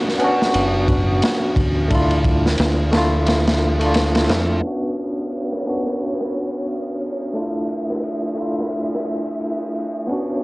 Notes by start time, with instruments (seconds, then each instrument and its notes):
Already playing: tine electric piano B3 C#4 D4 F#4
0.09 snare
0.18 tine electric piano B3 C#4 D4, ride
0.24 tine electric piano F#4
0.42 snare
0.54 fingered electric bass F#1, ride
0.88 kick, ride
1.22 snare, ride
1.56 fingered electric bass D2, kick, ride
1.88 tine electric piano A3 D4, kick, ride
1.92 tine electric piano E4 F4
2.11 ride
2.24 kick, ride
2.46 snare
2.58 fingered electric bass D2, snare, ride
2.91 tine electric piano A3 D4 E4, snare, ride
2.97 tine electric piano F4
3.27 snare, ride
3.48 snare, ride
3.79 tine electric piano A3 D4, ride
3.84 tine electric piano E4 F4
3.94 snare, ride
4.15 snare, ride
4.29 fingered electric bass F2, snare, ride
4.61 tine electric piano B3 C#4 D4, violin section B3 C#5, ride
4.67 tine electric piano F#4
4.84 ride
4.97 ride
5.31 ride
5.52 snare
5.63 tine electric piano B3 C#4 D4, snare, ride
5.69 tine electric piano F#4
5.86 snare
5.99 ride
6.21 snare
6.33 ride
6.67 ride
7.01 ride
7.33 tine electric piano A3 D4 E4, violin section E5, ride
7.39 tine electric piano F4
7.55 ride
7.69 ride
7.90 snare
8.03 ride
8.34 tine electric piano A3 D4 E4, ride
8.40 tine electric piano F4
8.60 snare
8.72 ride
8.95 snare
9.06 ride
9.27 ride
9.40 ride
9.75 ride
10.07 tine electric piano B3 C#4 D4, violin section B3 C#5, ride
10.12 tine electric piano F#4
10.29 ride